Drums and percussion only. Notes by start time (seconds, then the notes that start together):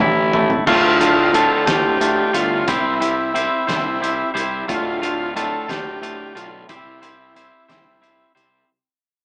0.00 mid tom
0.33 floor tom
0.50 floor tom
0.67 kick, crash
1.01 closed hi-hat
1.34 closed hi-hat
1.67 kick, snare, closed hi-hat
2.01 closed hi-hat
2.35 closed hi-hat
2.68 kick, closed hi-hat
3.02 closed hi-hat
3.36 closed hi-hat
3.69 kick, snare, closed hi-hat
4.04 closed hi-hat
4.37 closed hi-hat
4.69 kick, closed hi-hat
5.03 closed hi-hat
5.37 closed hi-hat
5.69 kick, snare, closed hi-hat
6.03 closed hi-hat
6.37 closed hi-hat
6.69 kick, closed hi-hat
7.03 closed hi-hat
7.36 closed hi-hat
7.69 kick, snare, closed hi-hat
8.04 closed hi-hat
8.37 closed hi-hat